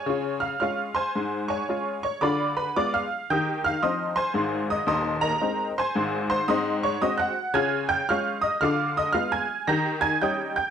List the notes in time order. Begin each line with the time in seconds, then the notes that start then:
Already playing: C#5 G#5 C#6
0.06 C#3 F4
0.40 F5 F6
0.60 G#3 C#4 F4 F5 C#6 F6
0.95 C5 G#5 C6
1.15 G#2
1.48 C#5 G#5 C#6
1.69 G#3 C#4 F4
2.03 C#5 C#6
2.21 D3 F4 D5 B5 D6
2.57 B4 B5
2.76 G#3 B3 F4 D5 D6
2.94 F5 F6
3.30 D#3 G4 G5 D#6 G6
3.64 F5 F6
3.83 F3 C4 D#4 D#5 C6 D#6
4.16 C5 G#5 C6
4.34 G#1 G#2
4.70 D#5 D#6
4.87 D#1 D#2 D#5 C6 D#6
5.21 A#4 D#5 A#5
5.41 G#3 C4 D#4
5.78 C5 G#5 C6
5.95 G#1 G#2
6.30 C5 C6
6.48 G#2 C4 D#5 C6 D#6
6.83 C#5 C#6
7.01 G#3 C4 F#4 D#5 D#6
7.18 F#5 F#6
7.54 C#3 F4 G#5 F6 G#6
7.89 G5 G6
8.09 G#3 C#4 F4 F5 C#6 F6
8.42 D#5 D#6
8.61 D3 F4 F5 D6 F6
8.97 D#5 D#6
9.13 G#3 B3 F4 F5 F6
9.32 G#5 G#6
9.67 D#3 G4 A#5 G6 A#6
10.01 G#5 G#6
10.22 G3 C#4 D#4 G5 D#6 G6
10.56 G5 G6